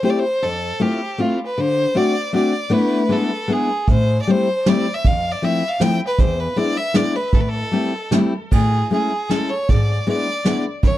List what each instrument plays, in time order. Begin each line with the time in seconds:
0.03 steel-string acoustic guitar A3 C4 E4 G4, violin C5
0.10 violin D5
0.20 violin C5
0.42 steel-string acoustic guitar F2, violin A4
0.80 steel-string acoustic guitar A3 C4 E4 F4, violin G4
1.18 steel-string acoustic guitar A3 C4 E4 F4, violin F4
1.46 violin B4
1.58 steel-string acoustic guitar D3, violin C5
1.95 steel-string acoustic guitar A3 C4 D4 F#4, violin D5
2.33 steel-string acoustic guitar A3 C4 D4 F#4, violin D5
2.70 steel-string acoustic guitar A3 B3 D4 E4, violin B4
3.09 steel-string acoustic guitar G#3 B3 D4 E4, violin A4
3.48 steel-string acoustic guitar G#3 B3 D4 E4
3.52 violin G#4
3.88 steel-string acoustic guitar A2, violin C5, kick, closed hi-hat
4.22 violin D5
4.27 steel-string acoustic guitar G3 A3 C4 E4, violin C5, closed hi-hat
4.66 steel-string acoustic guitar G3 A3 C4 E4, violin D5, snare, closed hi-hat
4.94 violin E5
5.05 steel-string acoustic guitar F2, violin F5, kick, closed hi-hat
5.32 violin D5
5.42 steel-string acoustic guitar F3 A3 C4 E4, violin E5, closed hi-hat
5.68 violin F5
5.80 steel-string acoustic guitar F3 A3 C4 E4, violin G5, snare, closed hi-hat
6.07 violin B4
6.18 steel-string acoustic guitar E2, violin C5, kick, closed hi-hat
6.40 violin B4
6.56 steel-string acoustic guitar G#3 B3 D4 E4, violin D5, closed hi-hat
6.77 violin E5
6.94 steel-string acoustic guitar G#3 B3 D4 E4, violin D5, snare, closed hi-hat
7.16 violin B4
7.33 steel-string acoustic guitar A2, violin A4, kick, closed hi-hat
7.41 violin B4
7.48 violin A4
7.71 steel-string acoustic guitar G3 A3 C4 E4, closed hi-hat
8.11 steel-string acoustic guitar G3 A3 C4 E4, snare, closed hi-hat
8.51 steel-string acoustic guitar A2, violin G#4, kick, crash
8.91 steel-string acoustic guitar G#3 A3 C#4 E4, violin G#4, closed hi-hat
9.29 steel-string acoustic guitar G#3 A3 C#4 E4, violin A4, snare, closed hi-hat
9.50 violin C#5
9.69 steel-string acoustic guitar G#2, violin D5, kick, closed hi-hat
10.07 steel-string acoustic guitar G#3 B3 D4 E4, violin D5, closed hi-hat
10.44 steel-string acoustic guitar G#3 B3 D4 E4, snare, closed hi-hat
10.83 steel-string acoustic guitar F#2, violin C#5, kick, closed hi-hat